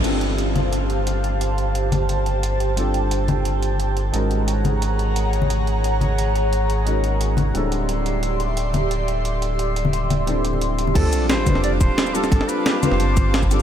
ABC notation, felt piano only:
X:1
M:4/4
L:1/8
Q:1/4=176
K:Ddor
V:1 name="Felt piano"
[G,CDFA]8- | [G,CDFA]8 | [G,CDFA]8 | [_A,_D_E_G_B]8- |
[_A,_D_E_G_B]8 | [_A,_D_E_G_B]4 [=G,C=D=E=A]4- | [G,CDEA]8- | [G,CDEA]4 [G,CDEA]4 |
[G,CDFA]3 [G,CDFB] z3 [G,CDFA] | [G,CDFA]3 [G,CDFB] z3 [G,CDFA] |]